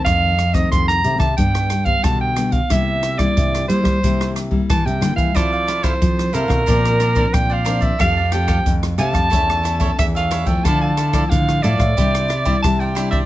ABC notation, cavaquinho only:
X:1
M:4/4
L:1/16
Q:1/4=91
K:F
V:1 name="Cavaquinho"
z16 | z16 | [EAcf] [Acf] [EAcf] [EAcf] z2 [EAcf] [Acf] [DBcd]2 [DBcd] [DBcd] z [Bcd] [DBcd] [Bcd] | [GAfa] [Gfa] [GAfa] [GAfa] z2 [GAfa] [Gfa] [EA^ce]2 [EAce] [EAce] z [Ace] [EAce] [Ace] |
[EAdf] [Adf] [EAdf] [EAdf] z2 [EAdf] [Adf] [EGcd]2 [EGcd] [EGcd] z [Gcd] [EGcd] [Gcd] |]